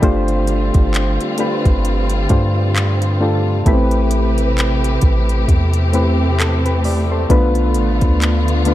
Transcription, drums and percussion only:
0.03 kick, closed hi-hat
0.28 closed hi-hat
0.47 closed hi-hat
0.74 kick, closed hi-hat
0.94 clap, closed hi-hat
1.21 closed hi-hat
1.38 closed hi-hat
1.66 kick, closed hi-hat
1.85 closed hi-hat
2.10 closed hi-hat
2.29 kick, closed hi-hat
2.76 clap, closed hi-hat
3.02 closed hi-hat
3.66 kick, closed hi-hat
3.91 closed hi-hat
4.11 closed hi-hat
4.38 closed hi-hat
4.58 clap, closed hi-hat
4.84 closed hi-hat
5.01 kick, closed hi-hat
5.29 closed hi-hat
5.48 kick, closed hi-hat
5.73 closed hi-hat
5.93 closed hi-hat
6.40 clap, closed hi-hat
6.66 closed hi-hat
6.84 open hi-hat
7.30 kick, closed hi-hat
7.55 closed hi-hat
7.74 closed hi-hat
8.01 kick, closed hi-hat
8.22 clap, closed hi-hat
8.48 closed hi-hat
8.65 closed hi-hat

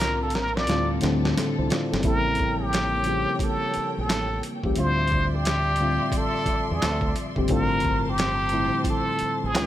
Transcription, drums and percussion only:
0.00 snare, closed hi-hat
0.30 closed hi-hat
0.35 snare
0.57 snare
0.67 snare, closed hi-hat
1.01 snare, closed hi-hat
1.25 snare
1.38 snare, closed hi-hat
1.70 snare, closed hi-hat
1.94 snare
2.03 kick, closed hi-hat
2.35 closed hi-hat
2.39 kick
2.73 finger snap, snare, closed hi-hat
3.04 closed hi-hat
3.39 kick, closed hi-hat
3.74 closed hi-hat
4.09 finger snap, snare, closed hi-hat
4.43 closed hi-hat
4.64 kick
4.76 closed hi-hat
5.08 closed hi-hat
5.12 kick
5.45 finger snap, snare, closed hi-hat
5.76 closed hi-hat
6.12 kick, closed hi-hat
6.46 kick, closed hi-hat
6.82 finger snap, snare, closed hi-hat
7.01 kick
7.16 closed hi-hat
7.36 kick
7.48 kick, closed hi-hat
7.80 closed hi-hat
7.85 kick
8.18 finger snap, snare, closed hi-hat
8.49 closed hi-hat
8.84 kick, closed hi-hat
9.19 closed hi-hat
9.55 finger snap, snare, closed hi-hat

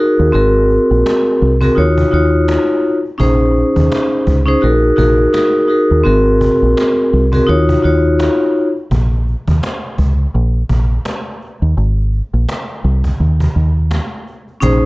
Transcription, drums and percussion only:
0.19 cajon slap
0.34 cajon slap
0.55 cajon slap
0.70 cajon slap
0.91 cajon slap
1.06 cajon slap
1.27 cajon slap
1.42 cajon slap
1.61 cajon bass
1.78 cajon slap
1.98 cajon bass
2.13 cajon slap
2.33 cajon slap
2.48 cajon slap
2.69 cajon slap
2.85 cajon slap
3.05 cajon slap
3.20 cajon bass
3.41 cajon slap
3.56 cajon slap
3.76 cajon bass
3.92 cajon slap
4.12 cajon slap
4.27 cajon bass
4.48 cajon slap
4.63 cajon slap
4.83 cajon slap
4.98 cajon bass
5.19 cajon slap
5.34 cajon slap
5.55 cajon slap
5.70 cajon slap
5.91 cajon slap
6.06 cajon slap
6.26 cajon slap
6.41 cajon bass
6.63 cajon slap
6.77 cajon slap
6.98 cajon slap
7.13 cajon slap
7.33 cajon bass
7.49 cajon slap
7.69 cajon bass
7.84 cajon slap
8.05 cajon slap
8.19 cajon slap
8.40 cajon slap
8.56 cajon slap
8.77 cajon slap
8.91 cajon bass
9.12 cajon slap
9.27 cajon slap
9.48 cajon bass
9.63 cajon slap
9.84 cajon slap
9.98 cajon bass
10.19 cajon slap
10.35 cajon slap
10.54 cajon slap
10.69 cajon bass
10.91 cajon slap
11.05 cajon slap
11.26 cajon slap
11.42 cajon slap
11.62 cajon slap
11.77 cajon slap
11.98 cajon slap
12.13 cajon slap
12.34 cajon slap
12.49 cajon slap
12.69 cajon slap
12.84 cajon slap
13.04 cajon bass
13.20 cajon slap
13.40 cajon bass
13.56 cajon slap
13.76 cajon slap
13.91 cajon slap
14.12 cajon slap
14.27 cajon slap
14.48 cajon slap
14.62 cajon bass, shaker

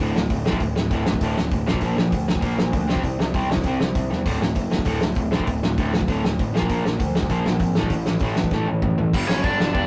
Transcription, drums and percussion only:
0.16 snare
0.30 kick, open hi-hat
0.46 snare
0.53 kick
0.60 kick, open hi-hat
0.76 snare
0.91 kick, open hi-hat
1.06 snare
1.14 kick
1.21 kick, open hi-hat
1.37 snare
1.51 kick, open hi-hat
1.68 snare
1.74 kick
1.81 kick, open hi-hat
1.98 snare
2.12 kick, open hi-hat
2.28 snare
2.35 kick
2.42 kick, open hi-hat
2.58 snare
2.73 kick, open hi-hat
2.89 snare
2.96 kick
3.04 kick, open hi-hat
3.20 snare
3.34 kick, open hi-hat
3.51 snare
3.57 kick
3.63 kick, open hi-hat
3.81 snare
3.95 kick, open hi-hat
4.12 snare
4.26 kick, open hi-hat, splash
4.42 snare
4.55 kick, open hi-hat
4.71 snare
4.79 kick
4.85 kick, open hi-hat
5.01 snare
5.15 kick, open hi-hat
5.32 snare
5.40 kick
5.47 kick, open hi-hat
5.63 snare
5.78 kick, open hi-hat
5.93 snare
6.01 kick
6.08 kick, open hi-hat
6.25 snare
6.39 kick, open hi-hat
6.56 snare
6.62 kick
6.69 kick, open hi-hat
6.86 snare
7.00 kick, open hi-hat
7.15 snare
7.22 kick
7.29 kick, open hi-hat
7.46 snare
7.59 kick, open hi-hat
7.75 snare
7.83 kick
7.90 kick, open hi-hat
8.06 snare
8.19 kick, open hi-hat
8.36 snare
8.44 kick
8.51 kick, snare
8.66 high tom
8.82 kick, mid tom
8.98 floor tom
9.13 kick, crash
9.29 snare
9.44 kick, crash
9.60 snare
9.75 kick, crash

